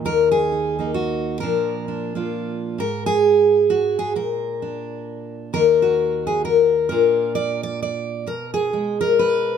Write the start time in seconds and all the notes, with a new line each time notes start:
Already playing: D#3
0.05 D#2 A#4
0.31 G#4
0.52 D#4
0.79 A#3 D#4
0.94 F#4
1.40 A#2 F3 A#3 D4 A#4
1.88 D4
2.15 A#3 D4 F4
2.78 G#2 A#4
3.06 G#4
3.70 F#4
3.99 G#4
4.16 A#2 A#4
4.62 D4
5.53 D#2 D#3 A#3 D#4 A#4
5.82 F#4
6.27 G#4
6.45 A#4
6.89 A#2 A#3 D4 F4 A#4
7.35 D5
7.63 D5
7.82 D5
8.26 B2 A#4
8.54 G#4
8.73 G#3
9.01 A#4
9.19 B4